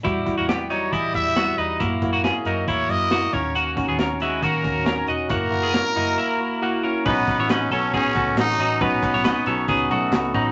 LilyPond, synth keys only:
\new Staff \with { instrumentName = "Synth keys" } { \time 4/4 \key fis \mixolydian \tempo 4 = 137 <g e' fis'>8 <g e' fis'>8 <g e' fis'>8 <g e' fis'>8 <g e' fis'>8 <g e' fis'>8 <g e' fis'>8 <g e' fis'>8 | <ais e' fis'>8 <ais e' fis'>8 <ais e' fis'>8 <ais e' fis'>8 <ais e' fis'>8 <ais e' fis'>8 <ais e' fis'>8 <cis' dis' fis'>8~ | <cis' dis' fis'>8 <cis' dis' fis'>8 <cis' dis' fis'>8 <cis' dis' fis'>8 <cis' dis' fis'>8 <cis' dis' fis'>8 <cis' dis' fis'>8 <cis' dis' fis'>8 | <ais e' fis'>8 <ais e' fis'>8 <ais e' fis'>8 <ais e' fis'>8 <ais e' fis'>8 <ais e' fis'>8 <ais e' fis'>8 <ais e' fis'>8 |
\key b \mixolydian <b cis' dis' fis'>8 <b cis' dis' fis'>8 <b cis' dis' fis'>8 <b cis' dis' fis'>8 <b cis' dis' fis'>8 <b cis' dis' fis'>8 <b cis' dis' fis'>8 <b cis' dis' fis'>8 | <b cis' dis' fis'>8 <b cis' dis' fis'>8 <b cis' dis' fis'>8 <b cis' dis' fis'>8 <b cis' dis' fis'>8 <b cis' dis' fis'>8 <b cis' dis' fis'>8 <b cis' dis' fis'>8 | }